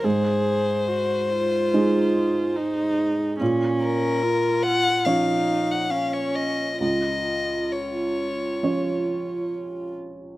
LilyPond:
<<
  \new Staff \with { instrumentName = "Violin" } { \time 4/4 \key des \major \tempo 4 = 71 c''2.~ c''8 r8 | r8 bes'4 ges''8 f''8. ges''16 f''16 des''16 ees''8 | ees''4 des''2 r4 | }
  \new Staff \with { instrumentName = "Viola" } { \time 4/4 \key des \major aes'4 ges'8 f'4. ees'4 | des'4 f'4 ees'4 des'4 | f'2.~ f'8 r8 | }
  \new Staff \with { instrumentName = "Felt piano" } { \time 4/4 \key des \major aes,2 <aes ees' aes'>2 | bes,2 <f des' des''>2 | des,2 <f des' des''>2 | }
>>